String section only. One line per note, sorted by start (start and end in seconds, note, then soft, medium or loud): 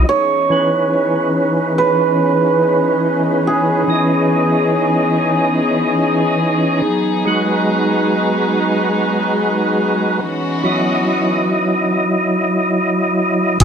0.09 6.81 E3 medium
0.09 10.19 B3 medium
0.09 6.81 C#4 medium
0.09 10.19 G#4 medium
6.83 10.18 F#3 medium
6.83 10.19 D#4 medium
10.21 11.89 E3 medium
10.21 11.89 B3 medium
10.21 11.89 C#4 medium
10.21 11.89 F#4 medium
13.59 13.64 C#3 medium
13.59 13.64 E3 medium
13.59 13.64 B3 medium
13.59 13.64 E4 medium